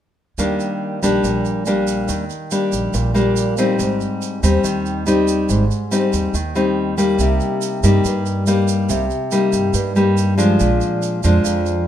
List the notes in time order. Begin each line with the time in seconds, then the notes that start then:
0.38 D#2 D#3 G3 A#3 D4, shaker
0.60 shaker
1.02 A#1 G3 A#3 D4, shaker
1.24 A#1 A#2, shaker
1.45 shaker
1.66 G3 A#3 D4, shaker
1.87 shaker
2.08 D#2 D#3, shaker
2.30 shaker
2.51 G3 A#3 D4, shaker
2.72 A#1, shaker
2.94 A#1 A#2, shaker
3.14 G3 A#3 D4, shaker
3.36 shaker
3.57 G3 C4 D#4, shaker
3.79 G#1 G#2, shaker
4.01 shaker
4.22 shaker
4.43 D#2 G3 C4 D#4, shaker
4.64 D#2 D#3, shaker
4.86 shaker
5.06 G3 C4 D#4, shaker
5.28 shaker
5.49 G#1 G#2, shaker
5.71 shaker
5.91 G3 C4 D#4, shaker
6.13 D#2, shaker
6.34 D#2 D#3, shaker
6.55 G3 C4 D#4, shaker
6.98 G3 A#3 D#4, shaker
7.19 C2 C3, shaker
7.40 shaker
7.62 shaker
7.83 G2 G3 A#3 D#4, shaker
8.05 G2, shaker
8.26 shaker
8.47 G3 A#3 D#4, shaker
8.68 shaker
8.89 C2 C3, shaker
9.10 shaker
9.31 G3 A#3 D#4, shaker
9.53 G2, shaker
9.74 G2, shaker
9.96 G3 A#3 D#4, shaker
10.17 shaker
10.38 F3 G#3 D4, shaker
10.60 A#1 A#2, shaker
10.81 shaker
11.02 shaker
11.23 F2 F3 G#3 D4, shaker
11.44 F2, shaker
11.66 shaker